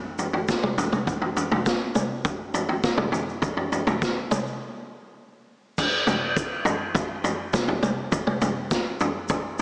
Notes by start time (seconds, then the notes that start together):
0.19 floor tom, shaker
0.33 floor tom
0.48 kick, snare, shaker
0.63 mid tom
0.78 floor tom, shaker
0.92 mid tom, shaker
1.07 kick, floor tom, shaker
1.22 floor tom
1.37 floor tom, shaker
1.52 floor tom, mid tom
1.66 kick, snare, shaker
1.95 mid tom, shaker
2.25 kick, floor tom, shaker
2.54 floor tom, shaker
2.69 floor tom
2.84 kick, snare, shaker
2.98 floor tom, mid tom
3.12 floor tom, shaker
3.29 shaker
3.42 kick, floor tom, shaker
3.57 floor tom
3.72 floor tom, shaker
3.87 floor tom, mid tom, shaker
4.02 kick, snare, shaker
4.31 mid tom, shaker
4.46 shaker
5.78 kick, floor tom, crash, shaker
6.07 floor tom, mid tom, shaker
6.37 kick, shaker
6.65 floor tom, shaker
6.95 kick, floor tom, shaker
7.24 floor tom, shaker
7.53 kick, snare, mid tom, shaker
7.68 floor tom
7.83 mid tom, shaker
8.12 kick, floor tom, shaker
8.27 mid tom
8.42 floor tom, mid tom, shaker
8.71 kick, snare, shaker
9.00 floor tom, shaker
9.29 kick, floor tom, shaker
9.59 shaker